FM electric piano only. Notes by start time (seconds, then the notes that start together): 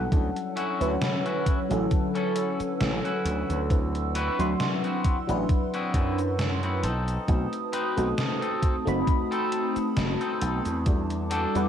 Already playing: G3 D4 E4 A4 F#5
0.11 F#3 C#4 D4 E4 A4
0.80 D3 F#3 C#4 E4 B4
1.69 D3 F#3 C#4 E4 A4
3.70 F#3 C4 D4 E4 B4
4.39 F#3 D4 E4 C6
5.27 F#3 D4 E4 B4
7.27 A3 C4 D#4 F#4 B4
7.97 A3 C4 D#4 F#4
8.85 A3 C4 D#4 F#4 B5
10.86 G3 D4 E4 F#4 A4
11.55 G3 D4 E4 B4 F#5